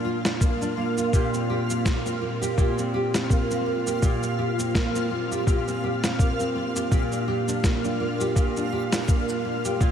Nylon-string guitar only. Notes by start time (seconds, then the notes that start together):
Already playing: A#2 F3 A#3 D4
0.05 F4
0.25 D4
0.41 A#3
0.61 D4
0.77 A#3
0.98 F4
1.13 A#2 G4
1.34 C4
1.50 G4
1.70 C4
1.86 A#3
2.06 C4
2.21 A#3
2.42 G4
2.58 A#2 G4
2.78 C4
2.94 G4
3.14 C4
3.30 A#3
3.50 C4
3.66 A#3
3.87 G4
4.02 A#2 G4
4.23 C4
4.39 G4
4.59 C4
4.75 A#3
4.95 C4
5.11 A#3
5.31 G4
5.47 A#2 G4
5.68 C4
5.84 G4
6.04 C4
6.20 A#3
6.40 C4
6.56 A#3
6.76 G4
6.92 A#2 G4
7.11 D4
7.28 G4
7.48 D4
7.64 A#3
7.84 D4
8.00 A#3
8.20 G4
8.36 A#2 G4
8.57 D4
8.72 G4
8.93 D4
9.09 A#3
9.29 D4
9.45 A#3
9.65 G4
9.81 A#2 F4